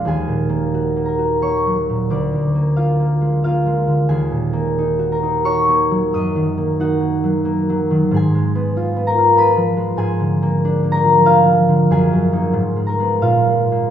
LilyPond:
<<
  \new Staff \with { instrumentName = "Harp" } { \time 3/4 \key ees \minor \tempo 4 = 90 <aes' aes''>4. <bes' bes''>8 <des'' des'''>4 | <d'' d'''>4 <f' f''>4 <f' f''>4 | <aes' aes''>4. <bes' bes''>8 <des'' des'''>4 | <ees'' ees'''>4 <ges' ges''>2 |
<aes' aes''>4. <bes' bes''>8 <ces'' ces'''>4 | <aes' aes''>4. <bes' bes''>8 <f' f''>4 | <aes' aes''>4. <bes' bes''>8 <f' f''>4 | }
  \new Staff \with { instrumentName = "Harp" } { \clef bass \time 3/4 \key ees \minor \tuplet 3/2 { <ees, bes bes'>8 bes,8 bes8 ges'8 bes8 ges'8 bes8 ges8 bes,8 } | \tuplet 3/2 { d,8 d8 bes8~ bes8 bes8 aes8 bes8 aes8 d8 } | \tuplet 3/2 { ees,8 bes,8 bes8 ees'8 ges'8 ees'8 ges'8 bes8 ges8 } | \tuplet 3/2 { ges,8 ees8 bes8 ees'8 bes8 ges8 bes8 ges8 ees8 } |
\tuplet 3/2 { aes,8 aes8 ces'8 f'8 ces'8 f'8 ces'8 f8 aes8 } | \tuplet 3/2 { aes,8 d8 bes8 d'8 bes8 f8 bes8 f8 d8 } | \tuplet 3/2 { ges,8 ges8 <bes ees'>8 aes,8 aes8 <aes ces'>8 bes,8 aes8 <aes bes>8 } | }
>>